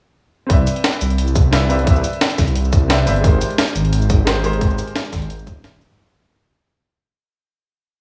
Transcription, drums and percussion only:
0.50 kick, closed hi-hat
0.67 closed hi-hat, cabasa
0.76 closed hi-hat
0.84 snare, closed hi-hat
0.93 closed hi-hat, cabasa
1.01 closed hi-hat, cabasa
1.10 closed hi-hat
1.18 closed hi-hat
1.27 cabasa
1.36 kick, closed hi-hat, cabasa
1.53 snare, closed hi-hat
1.70 open hi-hat, cabasa
1.79 closed hi-hat
1.87 kick, closed hi-hat
1.96 cabasa
2.04 closed hi-hat, cabasa
2.13 closed hi-hat
2.21 snare, closed hi-hat
2.30 closed hi-hat, cabasa
2.38 kick, snare, closed hi-hat, cabasa
2.48 closed hi-hat
2.56 closed hi-hat
2.65 cabasa
2.73 kick, closed hi-hat, cabasa
2.90 snare, closed hi-hat
3.07 open hi-hat, cabasa
3.16 closed hi-hat
3.24 kick, closed hi-hat
3.41 closed hi-hat, cabasa
3.50 closed hi-hat
3.58 snare, closed hi-hat
3.68 closed hi-hat, cabasa
3.76 closed hi-hat, cabasa
3.85 closed hi-hat
3.93 closed hi-hat
4.02 cabasa
4.10 kick, closed hi-hat, cabasa
4.27 snare, closed hi-hat
4.44 open hi-hat, cabasa
4.53 closed hi-hat
4.61 kick, closed hi-hat
4.70 cabasa
4.78 closed hi-hat, cabasa
4.88 closed hi-hat
4.96 snare, closed hi-hat
5.05 closed hi-hat, cabasa
5.13 kick, snare, closed hi-hat, cabasa
5.22 closed hi-hat
5.30 closed hi-hat
5.39 cabasa
5.47 kick, closed hi-hat, cabasa
5.64 snare, closed hi-hat
5.81 open hi-hat, cabasa
5.91 closed hi-hat

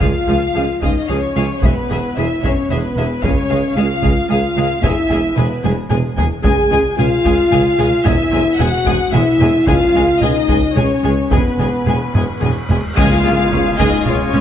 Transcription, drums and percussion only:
0.01 taiko
0.82 taiko
1.63 taiko
2.44 taiko
3.24 taiko
4.03 taiko
4.84 taiko
5.37 taiko mid
5.64 taiko high
5.91 taiko mid
6.18 taiko low
6.44 taiko
6.99 taiko mid
7.25 taiko
7.52 taiko mid
7.79 taiko mid
8.06 taiko
8.60 taiko mid
8.86 taiko
9.14 taiko mid
9.41 taiko mid
9.67 taiko
10.22 taiko mid
10.49 taiko
10.77 taiko mid
11.04 taiko mid
11.32 taiko
11.87 taiko mid
12.15 taiko low-mid
12.42 taiko low-mid
12.70 taiko low
12.97 taiko, tam-tam
13.52 taiko mid
13.79 taiko
14.06 taiko mid
14.34 taiko mid

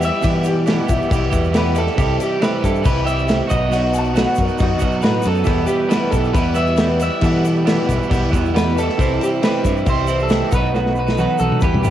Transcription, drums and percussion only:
0.02 crash, shaker
0.23 kick, crash, shaker
0.44 crash, shaker
0.67 snare, crash, shaker
0.89 kick, crash, shaker
1.02 shaker
1.11 kick, crash, shaker
1.33 kick, crash, shaker
1.44 shaker
1.54 snare, crash, shaker
1.75 crash, shaker
1.87 snare
1.98 kick, crash, shaker
2.20 crash, shaker
2.42 snare, crash, shaker
2.64 kick, snare, crash, shaker
2.75 shaker
2.85 kick, crash, shaker
3.07 crash, shaker
3.19 shaker
3.28 snare, crash, shaker
3.50 kick, crash, shaker
3.72 crash, shaker
3.94 crash, shaker
4.05 shaker
4.16 snare, crash, shaker
4.35 kick, crash, shaker
4.48 shaker
4.58 kick, crash, shaker
4.79 kick, crash, shaker
4.92 shaker
5.02 snare, crash, shaker
5.22 crash, shaker
5.35 shaker
5.44 kick, crash, shaker
5.67 crash, shaker
5.91 snare, crash, shaker
6.12 kick, crash, shaker
6.24 shaker
6.35 kick, crash, shaker
6.55 crash, shaker
6.67 shaker
6.77 snare, crash, shaker
6.99 crash, shaker
7.21 kick, crash, shaker
7.45 crash, shaker
7.67 snare, crash, shaker
7.89 kick, snare, crash, shaker
8.03 shaker
8.11 kick, crash, shaker
8.33 kick, crash, shaker
8.45 shaker
8.56 snare, crash, shaker
8.78 crash, shaker
8.89 snare
8.99 kick, crash, shaker
9.21 crash, shaker
9.43 snare, crash, shaker
9.65 kick, snare, crash, shaker
9.77 shaker
9.86 kick, crash, shaker
10.07 crash, shaker
10.19 shaker
10.29 snare, crash, shaker
10.52 kick, crash, shaker
10.75 snare, shaker
10.86 snare
10.95 shaker
11.07 snare, shaker
11.18 high tom, shaker
11.39 high tom, shaker
11.52 mid tom
11.61 kick, shaker
11.75 mid tom
11.84 mid tom, shaker

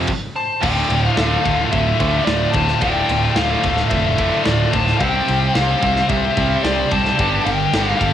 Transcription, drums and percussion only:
0.07 kick, crash
0.62 kick, crash
0.90 ride
1.17 snare, ride
1.46 kick, ride
1.73 kick, ride
2.00 kick, ride
2.27 snare, ride
2.53 kick, ride
2.68 snare
2.81 kick, ride
3.09 ride
3.36 snare, ride
3.63 kick, ride
3.77 snare
3.90 kick, ride
4.18 kick, ride
4.45 snare, ride
4.73 kick, ride
4.87 snare
5.00 kick, ride
5.28 ride
5.55 snare, ride
5.82 kick, ride
5.96 snare
6.09 kick, ride
6.37 kick, ride
6.65 snare, ride
6.91 kick, ride
7.05 snare
7.19 kick, ride
7.46 ride
7.74 snare, ride
8.01 kick, ride

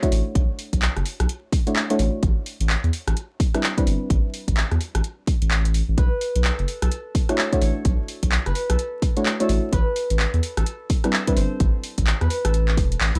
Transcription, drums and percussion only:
0.03 kick, closed hi-hat
0.12 open hi-hat
0.35 kick, closed hi-hat
0.59 open hi-hat
0.73 kick, closed hi-hat
0.82 clap
0.97 cross-stick, closed hi-hat
1.06 open hi-hat
1.20 cross-stick, closed hi-hat
1.29 closed hi-hat
1.52 kick, open hi-hat
1.67 closed hi-hat
1.76 clap
1.90 closed hi-hat
1.99 open hi-hat
2.23 kick, closed hi-hat
2.46 open hi-hat
2.61 closed hi-hat
2.70 clap
2.84 closed hi-hat
2.93 open hi-hat
3.08 cross-stick, closed hi-hat
3.17 closed hi-hat
3.40 kick, open hi-hat
3.54 cross-stick, closed hi-hat
3.63 clap
3.78 kick, closed hi-hat
3.87 open hi-hat
4.10 kick, closed hi-hat
4.34 open hi-hat
4.48 kick, closed hi-hat
4.57 clap
4.71 cross-stick, closed hi-hat
4.81 open hi-hat
4.95 cross-stick, closed hi-hat
5.04 closed hi-hat
5.27 kick, open hi-hat
5.42 closed hi-hat
5.51 clap
5.65 closed hi-hat
5.74 open hi-hat
5.98 kick, closed hi-hat
6.21 open hi-hat
6.36 closed hi-hat
6.44 clap
6.59 closed hi-hat
6.68 open hi-hat
6.82 cross-stick, closed hi-hat
6.92 closed hi-hat
7.15 kick, open hi-hat
7.29 cross-stick, closed hi-hat
7.38 clap
7.53 kick, closed hi-hat
7.62 open hi-hat
7.85 kick, closed hi-hat
8.08 open hi-hat
8.23 kick, closed hi-hat
8.32 clap
8.46 cross-stick, closed hi-hat
8.55 open hi-hat
8.70 cross-stick, closed hi-hat
8.79 closed hi-hat
9.02 kick, open hi-hat
9.17 closed hi-hat
9.26 clap
9.40 closed hi-hat
9.49 open hi-hat
9.73 kick, closed hi-hat
9.96 open hi-hat
10.10 closed hi-hat
10.19 clap
10.34 closed hi-hat
10.43 open hi-hat
10.57 cross-stick, closed hi-hat
10.66 closed hi-hat
10.90 kick, open hi-hat
11.04 cross-stick, closed hi-hat
11.13 clap
11.27 kick, closed hi-hat
11.37 open hi-hat
11.60 kick, closed hi-hat
11.84 open hi-hat
11.98 kick, closed hi-hat
12.07 clap
12.21 cross-stick, closed hi-hat
12.30 open hi-hat
12.45 cross-stick, closed hi-hat
12.54 closed hi-hat
12.68 clap
12.77 kick, open hi-hat
12.92 closed hi-hat
13.01 clap
13.15 closed hi-hat

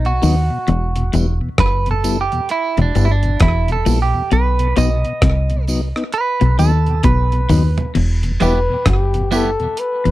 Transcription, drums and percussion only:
0.05 closed hi-hat
0.22 open hi-hat, tambourine
0.68 closed hi-hat
0.96 closed hi-hat
1.13 closed hi-hat, tambourine
1.58 kick, cross-stick, closed hi-hat
1.86 closed hi-hat
2.04 closed hi-hat, tambourine
2.32 closed hi-hat
2.49 closed hi-hat
2.77 closed hi-hat
2.95 closed hi-hat, tambourine
3.23 closed hi-hat
3.40 kick, cross-stick, closed hi-hat
3.68 closed hi-hat
3.86 open hi-hat, tambourine
4.31 closed hi-hat
4.59 closed hi-hat
4.76 closed hi-hat, tambourine
5.05 closed hi-hat
5.22 kick, cross-stick, closed hi-hat
5.50 closed hi-hat
5.67 open hi-hat, tambourine
5.96 cross-stick
6.12 closed hi-hat
6.41 closed hi-hat
6.59 closed hi-hat, tambourine
6.86 closed hi-hat
7.03 kick, closed hi-hat, high tom
7.32 closed hi-hat
7.49 mid tom, open hi-hat, tambourine
7.77 closed hi-hat, floor tom
7.95 closed hi-hat, crash
8.23 closed hi-hat
8.40 closed hi-hat, tambourine
8.86 kick, cross-stick, closed hi-hat
9.14 closed hi-hat
9.32 closed hi-hat, tambourine
9.60 closed hi-hat
9.77 closed hi-hat
10.05 closed hi-hat

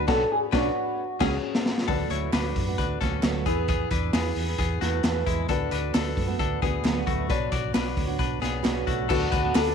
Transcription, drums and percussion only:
0.08 kick, snare, crash
0.53 kick, snare
1.20 kick, snare, crash
1.55 snare
1.66 snare
1.78 snare
1.88 kick, open hi-hat
2.10 clap, hi-hat pedal, open hi-hat
2.33 snare, clap, hi-hat pedal, open hi-hat
2.56 kick, hi-hat pedal, open hi-hat
2.78 kick, hi-hat pedal, open hi-hat
3.01 kick, snare, hi-hat pedal, open hi-hat
3.23 snare, clap, hi-hat pedal, open hi-hat
3.46 kick, hi-hat pedal, open hi-hat
3.68 kick, hi-hat pedal, open hi-hat
3.91 kick, clap, hi-hat pedal, open hi-hat
4.13 snare, clap, hi-hat pedal, open hi-hat
4.36 hi-hat pedal, open hi-hat
4.58 kick, hi-hat pedal, open hi-hat
4.81 snare, hi-hat pedal, open hi-hat
5.03 snare, clap, hi-hat pedal, open hi-hat
5.27 kick, hi-hat pedal, open hi-hat
5.49 kick, hi-hat pedal, open hi-hat
5.71 clap, hi-hat pedal, open hi-hat
5.94 snare, clap, hi-hat pedal, open hi-hat
6.17 kick, hi-hat pedal, open hi-hat
6.39 kick, hi-hat pedal, open hi-hat
6.62 kick, hi-hat pedal, open hi-hat
6.84 snare, clap, hi-hat pedal, open hi-hat
7.07 kick, hi-hat pedal, open hi-hat
7.30 kick, hi-hat pedal, open hi-hat
7.52 kick, clap, hi-hat pedal, open hi-hat
7.74 snare, clap, hi-hat pedal, open hi-hat
7.97 kick, hi-hat pedal, open hi-hat
8.19 kick, hi-hat pedal, open hi-hat
8.42 snare, hi-hat pedal, open hi-hat
8.64 snare, clap, hi-hat pedal, open hi-hat
8.87 kick, hi-hat pedal, open hi-hat
9.10 kick, crash
9.32 kick, clap, hi-hat pedal, open hi-hat
9.55 snare, clap, hi-hat pedal, open hi-hat

